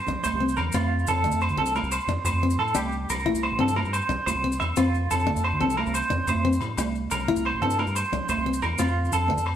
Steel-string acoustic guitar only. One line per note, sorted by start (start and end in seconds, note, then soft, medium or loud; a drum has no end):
0.08 0.37 D4 medium
0.40 0.70 C4 medium
0.74 muted steel-string acoustic guitar stroke loud
1.24 1.54 D4 medium
1.57 1.87 C4 medium
2.09 2.38 D4 medium
2.43 2.72 C4 medium
2.75 3.05 D4 medium
3.26 3.55 E4 medium
3.59 3.89 C4 medium
4.09 4.39 D4 medium
4.44 4.73 C4 medium
4.77 5.07 C4 medium
5.27 5.56 D4 medium
5.61 5.90 C4 medium
6.10 6.40 D4 medium
6.45 6.74 C4 medium
6.79 7.08 D4 loud
7.28 7.58 E4 medium
7.63 7.92 C4 medium
8.13 8.42 D4 medium
8.46 8.75 C4 medium
8.79 9.09 C4 medium
9.30 9.56 D4 medium